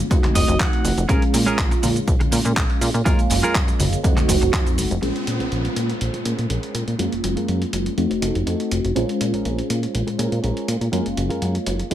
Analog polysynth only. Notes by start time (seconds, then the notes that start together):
0.10 A3 C4 D#4 F#4
1.08 G#3 C#4 F4
3.05 G#3 A#3 C#4 F4
4.03 A3 C4 D#4 F#4
5.02 G#3 C#4 F4 C5
6.99 G#3 A#3 C#4 F4
7.97 A3 C4 D#4 F#4
8.95 G#3 C#4 F4 C5
10.92 G#3 A#3 C#4 F4
11.90 A3 C4